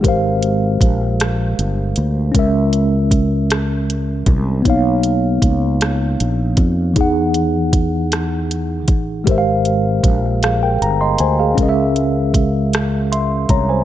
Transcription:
<<
  \new Staff \with { instrumentName = "Tine electric piano" } { \time 6/8 \key aes \major \tempo 4. = 52 << { r2. | r2. | r2. | r2. |
r4. <aes' f''>16 <bes' g''>16 bes''16 <ees'' c'''>16 <c'' aes''>16 <aes' f''>16~ | <aes' f''>16 r4. r16 <fes'' c'''>8 <des'' bes''>16 <c'' aes''>16 | } \\ { <aes g' bes' c'' f''>2. | <aes des' bes' fes''>2. | <ais b dis' cis'' eis''>2. | <e dis' gis' fis''>2. |
<aes g' bes' c'' fes'' f''>2. | <aes des' bes' ees'' fes''>2. | } >> }
  \new Staff \with { instrumentName = "Fretless electric bass" } { \clef bass \time 6/8 \key aes \major aes,,4 bes,,4 g,,8 d,8 | des,2~ des,8 c,8 | b,,4 cis,4 ais,,8 eis,8 | e,2~ e,8 a,,8 |
aes,,4 bes,,4 g,,8 d,8 | des,2~ des,8 c,8 | }
  \new DrumStaff \with { instrumentName = "Drums" } \drummode { \time 6/8 <hh bd>8 hh8 <hh bd>8 <hh ss>8 hh8 hh8 | <hh bd>8 hh8 <hh bd>8 <hh ss>8 hh8 <hh bd>8 | <hh bd>8 hh8 <hh bd>8 <hh ss>8 hh8 <hh bd>8 | <hh bd>8 hh8 <hh bd>8 <hh ss>8 hh8 <hh bd>8 |
<hh bd>8 hh8 <hh bd>8 <hh ss>8 hh8 hh8 | <hh bd>8 hh8 <hh bd>8 <hh ss>8 hh8 <hh bd>8 | }
>>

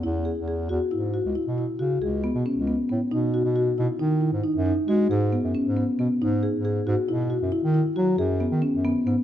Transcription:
<<
  \new Staff \with { instrumentName = "Marimba" } { \time 7/4 \key e \major \tempo 4 = 136 e'8 gis'8 gis'8 fis'8 e'8 fis'8 e'8 e'8 fis'8 gis'8 b8 cis'8 b8 b8 | dis'8 fis'8 fis'8 e'8 dis'8 e'8 dis'8 dis'8 fis'8 gis'8 b8 cis'8 b8 b8 | dis'8 gis'8 gis'8 fis'8 e'8 fis'8 e'8 e'8 fis'8 gis'8 b8 cis'8 b8 b8 | }
  \new Staff \with { instrumentName = "Bass clarinet" } { \clef bass \time 7/4 \key e \major e,8. e,8. e,16 r16 gis,8. cis,16 r16 b,8 r16 cis8 cis,8. b,16 r16 cis,8 r16 a,16 r16 | b,8. b,8. b,16 r16 dis8. gis,16 r16 fis,8 r16 gis8 gis,8. fis,16 r16 gis,8 r16 b,16 r16 | gis,8. gis,8. gis,16 r16 b,8. fis,16 r16 dis8 r16 fis8 fis,8. dis16 r16 fis,8 r16 gis,16 r16 | }
>>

